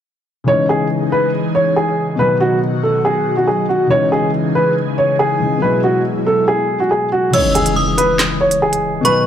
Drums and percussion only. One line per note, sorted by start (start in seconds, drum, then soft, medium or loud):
7.33 closed hi-hat medium
7.33 crash loud
7.55 closed hi-hat medium
7.66 closed hi-hat medium
7.98 closed hi-hat medium
8.19 snare loud
8.19 clap loud
8.19 closed hi-hat medium
8.51 closed hi-hat medium
8.73 closed hi-hat medium
9.05 closed hi-hat medium